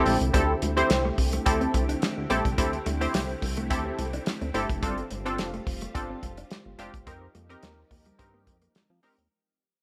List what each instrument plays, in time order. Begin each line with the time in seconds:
Already playing: string machine D3 A3 C4 E4 G4, analog polysynth C4 E4 G4 A4
0.06 analog synth bass A#1, clean electric guitar D4, open hi-hat, high conga
0.21 analog synth bass C2, closed hi-hat
0.34 analog synth bass D2, string machine D3 A3 C4 E4 G4, analog polysynth C4 E4 G4 A4, clean electric guitar D4, kick, closed hi-hat, muted conga
0.62 analog synth bass D2, muted clean electric guitar stroke, closed hi-hat, muted conga
0.77 analog polysynth C4 E4 G4 C5, clean electric guitar C4, closed hi-hat
0.90 analog synth bass C2, snare, closed hi-hat, high conga
1.05 clean electric guitar A3
1.18 analog synth bass C2, muted clean electric guitar stroke, kick, open hi-hat
1.32 clean electric guitar A3, closed hi-hat
1.46 analog synth bass D2, analog polysynth C4 E4 G4 A4, kick, closed hi-hat
1.61 clean electric guitar C4, closed hi-hat
1.74 analog synth bass C2, muted clean electric guitar stroke, kick, closed hi-hat, muted conga
1.89 clean electric guitar D4, closed hi-hat
2.02 snare, closed hi-hat, high conga
2.17 analog synth bass D2
2.30 analog synth bass A#1, analog polysynth C4 E4 G4 A4, clean electric guitar C4, closed hi-hat, high conga
2.45 analog synth bass C2, kick, closed hi-hat
2.58 analog synth bass D2, analog polysynth C4 E4 G4 A4, kick, closed hi-hat, muted conga
2.73 muted clean electric guitar stroke, closed hi-hat
2.86 analog synth bass D2, clean electric guitar A3, closed hi-hat, muted conga
3.01 analog polysynth C4 E4 G4 C5, clean electric guitar C4, closed hi-hat
3.14 analog synth bass C2, clean electric guitar A3, snare, closed hi-hat, high conga
3.29 closed hi-hat
3.42 analog synth bass C2, muted clean electric guitar stroke, kick, open hi-hat
3.57 clean electric guitar A3, closed hi-hat
3.70 analog synth bass D2, analog polysynth C4 E4 G4 A4, kick, closed hi-hat, muted conga, low conga
3.85 clean electric guitar C4
3.99 analog synth bass C2, muted clean electric guitar stroke, closed hi-hat, muted conga
4.13 clean electric guitar D4, closed hi-hat
4.26 muted clean electric guitar stroke, snare, closed hi-hat, high conga
4.41 analog synth bass D2, clean electric guitar C4, closed hi-hat
4.54 analog synth bass G1, analog polysynth C4 E4 G4 A4, clean electric guitar D4, closed hi-hat, high conga
4.70 analog synth bass F1, kick, closed hi-hat
4.82 analog synth bass G1, string machine G3 F4, clean electric guitar G3, analog polysynth C4 D4 F4 A4, kick, closed hi-hat, muted conga
4.98 closed hi-hat
5.11 analog synth bass G1, muted clean electric guitar stroke, closed hi-hat, muted conga
5.25 analog polysynth C4 D4 F4 A4, clean electric guitar C4, closed hi-hat
5.38 analog synth bass F1, snare, closed hi-hat, high conga
5.54 clean electric guitar A3, closed hi-hat
5.67 analog synth bass F1, muted clean electric guitar stroke, kick, open hi-hat
5.81 clean electric guitar A3, closed hi-hat
5.95 analog synth bass G1, analog polysynth C4 D4 F4 A4, kick, closed hi-hat
6.10 clean electric guitar C4
6.23 analog synth bass F1, muted clean electric guitar stroke, kick, closed hi-hat, muted conga
6.37 clean electric guitar D4, closed hi-hat
6.51 snare, closed hi-hat, high conga
6.66 analog synth bass G1
6.79 analog synth bass F1, analog polysynth C4 D4 F4 G4, clean electric guitar C4, closed hi-hat, high conga
6.94 analog synth bass G1, kick, closed hi-hat
7.07 analog synth bass F2, string machine F3 D#4 G4 A#4, analog polysynth C4 D#4 G4 A#4, kick, closed hi-hat, muted conga
7.22 muted clean electric guitar stroke
7.35 analog synth bass F2, clean electric guitar A#3, closed hi-hat, muted conga
7.49 analog polysynth C4 D#4 G4 A#4, clean electric guitar C4, closed hi-hat
7.63 analog synth bass D#2, clean electric guitar A3, snare, closed hi-hat, high conga
7.91 analog synth bass D#2, muted clean electric guitar stroke, kick, open hi-hat, low conga
8.05 clean electric guitar G3, closed hi-hat
8.19 analog synth bass G2, analog polysynth C4 D#4 G4 A#4, kick, closed hi-hat, muted conga, low conga
8.34 clean electric guitar A#3
8.47 analog synth bass F2, muted clean electric guitar stroke, kick, closed hi-hat, muted conga
8.62 clean electric guitar A#3, closed hi-hat
8.75 snare, closed hi-hat, high conga
8.90 analog synth bass F3, clean electric guitar C4, high conga
9.03 analog polysynth C4 D#4 G4 A#4, clean electric guitar D4, open hi-hat, high conga
9.18 analog synth bass D#2, closed hi-hat